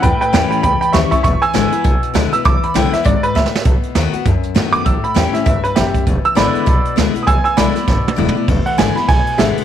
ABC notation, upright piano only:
X:1
M:4/4
L:1/8
Q:"Swing" 1/4=199
K:Emix
V:1 name="Upright piano"
[B=g] [Bg] [Bg] [gb] [gb] [gb] [ec'] [ec'] | [ec'] [ge']4 z2 e' | d' b =g e d B e2 | z6 z d' |
e' b =g e e B [=Ge]2 | z e' [db]4 z2 | [g^d'e'] [ge'] [=db]6 | z f g b g2 [Ge] z |]